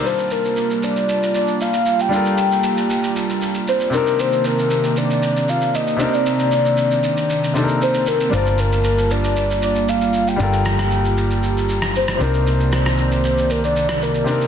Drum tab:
SH |xxxxxxxxxxxxxxxx|xxxxxxxxxxxxxxxx|xxxxxxxxxxxxxxxx|xxxxxxxxxxxxxxxx|
SD |----------------|----------------|----------------|----------------|

SH |xxxxxxxxxxxxxxxx|xxxxxxxxxxxxxxxx|xxxxxxxxxxxxxxxx|
SD |----------------|--rr-------r-r--|--rr-------r----|